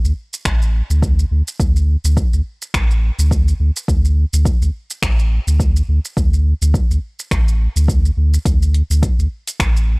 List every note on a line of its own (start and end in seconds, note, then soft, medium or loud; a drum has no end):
0.04 0.13 D2 medium
0.04 shaker soft
0.34 shaker medium
0.45 0.82 A1 medium
0.45 finger snap medium
0.45 kick loud
0.45 shaker medium
0.62 shaker soft
0.90 1.25 D2 loud
0.90 shaker medium
1.02 kick loud
1.02 shaker medium
1.19 shaker soft
1.31 1.42 D2 medium
1.48 shaker medium
1.60 1.96 D2 medium
1.60 kick loud
1.60 shaker medium
1.76 shaker soft
2.04 2.23 D2 loud
2.04 shaker medium
2.17 kick loud
2.17 shaker medium
2.33 2.42 D2 medium
2.33 shaker soft
2.62 shaker medium
2.74 3.11 A1 medium
2.74 finger snap medium
2.74 kick loud
2.74 shaker medium
2.91 shaker soft
3.19 3.53 D2 loud
3.19 shaker medium
3.31 kick loud
3.31 shaker medium
3.48 shaker soft
3.60 3.71 D2 loud
3.76 shaker medium
3.88 4.25 D2 loud
3.88 kick loud
3.88 shaker medium
4.05 shaker soft
4.33 4.52 D2 medium
4.33 shaker medium
4.45 kick loud
4.45 shaker medium
4.61 4.70 D2 medium
4.61 shaker soft
4.91 shaker medium
5.03 5.39 A1 medium
5.03 finger snap medium
5.03 kick loud
5.03 shaker medium
5.19 shaker soft
5.47 5.82 D2 loud
5.47 shaker medium
5.60 kick loud
5.60 shaker medium
5.76 shaker soft
5.89 5.99 D2 medium
6.05 shaker medium
6.17 6.54 D2 medium
6.17 kick loud
6.17 shaker medium
6.34 shaker soft
6.62 6.80 D2 loud
6.62 shaker medium
6.74 kick loud
6.74 shaker medium
6.90 6.99 D2 medium
6.90 shaker soft
7.19 shaker medium
7.31 7.68 A1 medium
7.31 finger snap medium
7.31 kick loud
7.31 shaker medium
7.48 shaker soft
7.76 8.11 D2 loud
7.76 shaker medium
7.88 kick loud
7.88 shaker medium
8.05 shaker soft
8.17 8.38 D2 medium
8.34 shaker medium
8.45 8.82 D2 loud
8.45 kick loud
8.45 closed hi-hat medium
8.45 shaker medium
8.62 shaker soft
8.74 closed hi-hat soft
8.90 9.09 D2 medium
8.90 shaker medium
9.03 kick loud
9.03 closed hi-hat medium
9.03 shaker soft
9.18 9.27 D2 medium
9.18 shaker soft
9.47 closed hi-hat soft
9.47 shaker medium
9.60 9.96 A1 medium
9.60 finger snap medium
9.60 kick loud
9.60 closed hi-hat medium
9.60 shaker medium
9.77 shaker soft